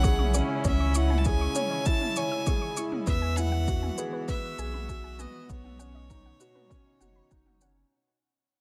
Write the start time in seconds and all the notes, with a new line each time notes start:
Already playing: B1 C#3 G#3 C#4 E4 F#4 G#4 C#5 E5 F#5
0.03 G#4 C#6, kick, shaker
0.19 C#6, mid tom
0.34 C#4 C#6, shaker
0.64 C#2 C#4 C#5 E5, kick, mid tom, shaker
0.80 C#6
0.94 E4 F#5 C#6, shaker
1.10 G#5, mid tom
1.18 A5
1.25 G#4 G#5, kick, shaker
1.41 C#6
1.55 C#5, mid tom, shaker
1.71 C#5
1.86 E4 C#5 A5, kick, shaker
2.01 mid tom
2.16 C#5 G#5 C#6, shaker
2.31 E6
2.46 G#4 C#6, kick, mid tom, shaker
2.61 C#6
2.77 E4 C#6, shaker
2.92 mid tom
3.06 E2 E3 B3 B4 E5, kick, shaker
3.22 G#5
3.28 B3
3.36 E4 F#5 G#5, mid tom, shaker
3.52 F#5
3.68 F#4, kick, shaker
3.83 G#5, mid tom
3.98 G#4 B4, shaker
4.13 B4
4.17 F#4
4.28 B4 E5, kick, mid tom, shaker
4.58 B1 G#4 G#5, shaker
4.74 B5, mid tom
4.89 F#4 G#5, kick, shaker
5.04 G#5
5.19 B3 D#5 G#5, mid tom, shaker
5.49 B1 B2 B3 B4 C#5, kick, shaker
5.64 F#5, mid tom
5.79 C#4 F#5, shaker
5.95 D#5
6.10 D#4, kick, mid tom, shaker
6.26 F#5
6.40 F#4 B4, shaker
6.55 D#4 B4 C#5, mid tom
6.70 C#4 B4, kick, shaker
7.00 F#1 F#4 F#5, mid tom, shaker
7.16 B5
7.31 F#1 D#4 F#5, kick, shaker
7.46 F#5, mid tom
7.61 C#4 F#5, shaker